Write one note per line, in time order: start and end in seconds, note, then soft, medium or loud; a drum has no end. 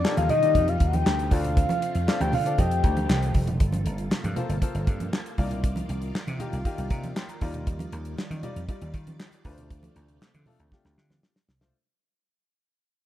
0.00 2.55 C3 medium
0.00 1.30 G3 medium
0.00 1.28 D#4 medium
0.00 1.27 F4 medium
0.00 0.15 D5 loud
0.04 0.29 A#3 medium
0.04 0.30 D#4 medium
0.04 0.30 F4 medium
0.04 0.30 G4 medium
0.04 0.30 A4 loud
0.04 snare loud
0.04 clap medium
0.17 0.28 D#2 loud
0.17 0.29 F5 medium
0.17 closed hi-hat medium
0.17 muted conga soft
0.17 high conga medium
0.29 0.56 D#3 loud
0.29 0.70 D#5 loud
0.29 closed hi-hat medium
0.29 low conga medium
0.42 1.10 A#3 medium
0.42 1.10 D#4 medium
0.42 1.10 F4 medium
0.42 1.10 G4 medium
0.42 1.10 D5 medium
0.42 closed hi-hat medium
0.55 0.77 F2 loud
0.55 kick medium
0.55 closed hi-hat medium
0.55 low conga medium
0.68 0.88 F5 loud
0.68 closed hi-hat medium
0.68 muted conga soft
0.80 1.02 D#2 medium
0.80 kick loud
0.80 closed hi-hat medium
0.87 0.95 F#5 medium
0.93 1.34 G5 loud
0.93 closed hi-hat medium
0.93 high conga medium
1.06 1.28 D2 loud
1.06 snare loud
1.06 clap medium
1.19 closed hi-hat soft
1.31 1.64 D2 medium
1.31 2.57 A3 medium
1.31 1.92 C4 medium
1.31 2.57 C4 medium
1.31 1.92 D4 medium
1.31 3.58 F4 medium
1.31 1.93 F4 medium
1.31 1.93 A4 medium
1.31 1.93 D5 medium
1.31 2.08 F5 loud
1.31 kick loud
1.31 open hi-hat medium
1.44 closed hi-hat medium
1.44 low conga medium
1.57 kick loud
1.57 closed hi-hat medium
1.69 closed hi-hat medium
1.69 muted conga soft
1.69 high conga medium
1.82 closed hi-hat medium
1.95 2.06 F2 medium
1.95 closed hi-hat soft
2.08 2.33 C4 medium
2.08 2.33 D4 medium
2.08 2.33 F4 medium
2.08 2.33 A4 medium
2.08 2.33 D5 medium
2.08 2.20 F5 loud
2.08 snare loud
2.08 clap medium
2.20 2.35 D2 loud
2.20 2.33 G5 medium
2.20 closed hi-hat medium
2.20 high conga medium
2.32 2.55 D3 loud
2.32 2.57 F5 medium
2.32 open hi-hat medium
2.32 low conga medium
2.46 2.57 C4 medium
2.46 2.59 D4 medium
2.46 2.57 F4 medium
2.46 2.57 A4 medium
2.46 2.59 D5 medium
2.46 closed hi-hat medium
2.58 2.80 F2 loud
2.58 3.59 D#3 medium
2.58 3.59 G3 medium
2.58 3.59 A3 medium
2.58 3.40 C4 medium
2.58 3.40 F4 medium
2.58 3.40 G4 medium
2.58 3.40 A4 medium
2.58 3.40 D#5 medium
2.58 3.31 G5 medium
2.58 kick medium
2.58 closed hi-hat medium
2.58 low conga medium
2.71 closed hi-hat medium
2.84 3.05 D2 medium
2.84 kick loud
2.84 closed hi-hat medium
2.97 closed hi-hat medium
2.97 high conga medium
3.09 3.31 C2 loud
3.09 snare loud
3.09 clap medium
3.09 muted conga soft
3.09 high conga soft
3.23 closed hi-hat medium
3.34 3.56 F1 medium
3.34 kick medium
3.34 open hi-hat medium
3.47 closed hi-hat medium
3.47 low conga medium
3.60 3.82 G1 loud
3.60 5.37 C3 medium
3.60 7.38 A#3 medium
3.60 9.41 F4 medium
3.60 5.37 A4 medium
3.60 kick loud
3.60 closed hi-hat medium
3.72 closed hi-hat medium
3.72 high conga medium
3.86 4.07 G1 loud
3.86 closed hi-hat medium
3.98 closed hi-hat soft
4.11 muted slap bass stroke medium
4.11 snare loud
4.11 clap medium
4.11 muted conga soft
4.24 4.35 G2 loud
4.24 closed hi-hat medium
4.24 muted conga soft
4.24 high conga medium
4.36 4.53 A#3 medium
4.36 4.53 F4 medium
4.36 4.54 A4 medium
4.36 4.54 C5 loud
4.36 closed hi-hat medium
4.36 low conga medium
4.49 4.60 G1 loud
4.49 closed hi-hat medium
4.62 5.21 A#3 medium
4.62 5.21 F4 medium
4.62 5.21 A4 medium
4.62 5.21 C5 medium
4.62 kick medium
4.62 closed hi-hat medium
4.62 muted conga soft
4.75 4.85 G1 loud
4.75 closed hi-hat medium
4.87 5.09 G2 loud
4.87 kick loud
4.87 closed hi-hat medium
5.00 closed hi-hat medium
5.00 high conga medium
5.13 snare loud
5.13 clap medium
5.26 closed hi-hat soft
5.38 5.81 C2 loud
5.38 7.40 D#3 medium
5.38 6.20 A#3 medium
5.38 5.44 D4 medium
5.38 6.20 F4 medium
5.38 7.40 D5 medium
5.38 6.20 D5 loud
5.38 kick medium
5.38 open hi-hat medium
5.44 6.23 D#4 medium
5.51 closed hi-hat medium
5.51 low conga medium
5.64 kick loud
5.64 closed hi-hat medium
5.64 muted conga soft
5.76 closed hi-hat medium
5.76 high conga medium
5.89 6.11 C2 loud
5.89 closed hi-hat medium
6.02 closed hi-hat soft
6.15 snare loud
6.15 clap medium
6.27 6.38 C3 loud
6.27 closed hi-hat medium
6.27 high conga medium
6.39 6.57 A#3 medium
6.39 6.57 D#4 medium
6.39 6.57 F4 medium
6.39 6.57 G4 loud
6.39 closed hi-hat medium
6.39 low conga medium
6.53 6.64 C2 medium
6.53 closed hi-hat medium
6.65 7.24 A#3 medium
6.65 7.24 D#4 medium
6.65 7.24 F4 medium
6.65 7.25 G4 loud
6.65 kick loud
6.65 closed hi-hat medium
6.78 6.89 C2 medium
6.78 closed hi-hat medium
6.78 muted conga soft
6.90 7.12 C3 medium
6.90 7.14 A#5 medium
6.90 kick loud
6.90 closed hi-hat medium
7.03 closed hi-hat soft
7.03 high conga medium
7.16 7.63 G5 medium
7.16 7.28 C6 medium
7.16 snare loud
7.16 clap medium
7.16 muted conga soft
7.28 7.53 A#5 medium
7.28 closed hi-hat medium
7.28 muted conga soft
7.41 7.85 D#2 loud
7.41 9.43 D#3 medium
7.41 8.23 G3 medium
7.41 9.43 G3 medium
7.41 8.23 D#4 medium
7.41 8.23 F4 medium
7.41 11.70 D5 medium
7.41 8.23 D5 loud
7.41 kick medium
7.41 open hi-hat medium
7.54 closed hi-hat medium
7.54 low conga medium
7.67 kick loud
7.67 closed hi-hat medium
7.79 closed hi-hat medium
7.79 muted conga soft
7.79 high conga medium
7.92 8.14 D#2 loud
7.92 closed hi-hat medium
8.05 closed hi-hat soft
8.18 snare loud
8.18 clap medium
8.18 muted conga soft
8.30 8.41 D#3 loud
8.30 closed hi-hat medium
8.30 muted conga soft
8.30 high conga medium
8.43 8.60 G3 medium
8.43 8.60 D#4 medium
8.43 8.60 F4 medium
8.43 8.60 D5 loud
8.43 closed hi-hat medium
8.43 low conga medium
8.56 8.67 F2 medium
8.56 closed hi-hat medium
8.69 9.28 G3 medium
8.69 9.28 D#4 medium
8.69 9.28 F4 medium
8.69 9.28 D5 medium
8.69 kick loud
8.69 closed hi-hat medium
8.81 8.92 D#2 medium
8.81 closed hi-hat medium
8.81 muted conga soft
8.94 9.16 D#3 loud
8.94 kick loud
8.94 closed hi-hat medium
9.07 closed hi-hat soft
9.07 high conga medium
9.20 snare loud
9.20 clap medium
9.32 closed hi-hat medium
9.32 muted conga soft
9.45 9.88 D2 loud
9.45 11.72 C3 medium
9.45 10.26 A3 medium
9.45 11.72 A3 medium
9.45 10.26 D4 medium
9.45 11.72 F4 medium
9.45 10.27 F4 medium
9.45 9.52 B4 medium
9.45 kick medium
9.45 open hi-hat medium
9.52 10.30 C5 loud
9.58 closed hi-hat medium
9.58 low conga medium
9.70 kick loud
9.70 closed hi-hat medium
9.70 muted conga soft
9.83 closed hi-hat medium
9.83 high conga medium
9.96 10.17 D2 medium
9.96 closed hi-hat medium
10.08 closed hi-hat soft
10.21 snare loud
10.21 clap medium
10.21 muted conga soft
10.34 10.45 D3 medium
10.34 closed hi-hat medium
10.34 muted conga soft
10.34 high conga medium
10.46 10.63 A3 medium
10.46 10.64 D4 medium
10.46 10.64 F4 medium
10.46 10.64 A4 loud
10.46 open hi-hat medium
10.46 low conga medium
10.60 10.70 D2 medium
10.60 closed hi-hat medium
10.72 11.31 A3 medium
10.72 11.31 D4 medium
10.72 11.31 F4 medium
10.72 11.31 G4 medium
10.72 kick loud
10.72 snare medium
10.72 muted conga soft
10.85 10.96 D2 medium
10.85 snare medium
10.85 muted conga soft
10.98 11.19 D3 loud
10.98 snare medium
11.10 snare medium
11.10 high conga medium
11.23 snare medium
11.36 snare medium
11.48 11.70 C2 medium
11.48 snare loud
11.61 11.74 A3 medium
11.61 11.74 D4 medium
11.61 11.74 F4 medium
11.61 11.74 C5 loud
11.61 snare loud
11.61 low conga medium